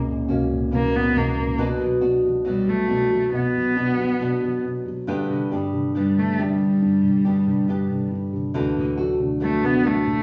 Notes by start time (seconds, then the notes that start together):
Already playing: C#2 A#2 C#3 A#3 C#4 F#4
0.07 A#2
0.28 C#2 A#3 C#4 F#4
0.50 A#2
0.71 C#3 E3 A#3 C#4 F#4
0.75 A#3
0.94 A#2 B3
1.16 C#2 A#3
1.37 A#2
1.58 B2 F#3 B3 D4 F#4
1.80 F#3
2.01 B2 B3 D4 F#4
2.24 F#3
2.45 B2 F#3 G3 B3 D4 F#4
2.67 F#3 A3
2.88 B2 B3 D4 F#4
3.11 F#3
3.33 B2 B3
3.54 F#3
3.75 B2 B3 D4 F#4
3.98 F#3
4.20 B2 F#3 B3 D4 F#4
4.42 F#3
4.64 B2
4.86 F#3
5.07 G2 D3 G3 B3 D4 G4
5.30 D3
5.52 G2 G3 B3 D4 G4
5.73 D3
5.95 G2 G3 B3 D4 G4
6.17 D3 A3
6.39 G2 G3 B3 D4 G4
6.61 D3
6.82 G2
7.03 D3
7.25 G2 G3 B3 D4 G4
7.47 D3
7.68 G2 G3 B3 D4 G4
7.90 D3
8.11 G2
8.33 D3
8.54 D2 D3 E3 A3 D4 F#4
8.76 A2
8.97 F#3 A3 D4 F#4
9.20 D3
9.40 E3 F#3 A3 D4 F#4
9.63 D3 B3
9.83 F#3 A3 D4 F#4
10.06 A2